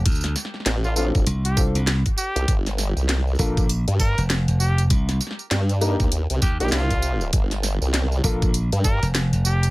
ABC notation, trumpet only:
X:1
M:4/4
L:1/16
Q:"Swing 16ths" 1/4=99
K:Gm
V:1 name="Trumpet"
z4 z F F z2 G z4 G2 | z8 z2 B z3 G z | z8 z2 G G F4 | z8 z2 B z3 G z |]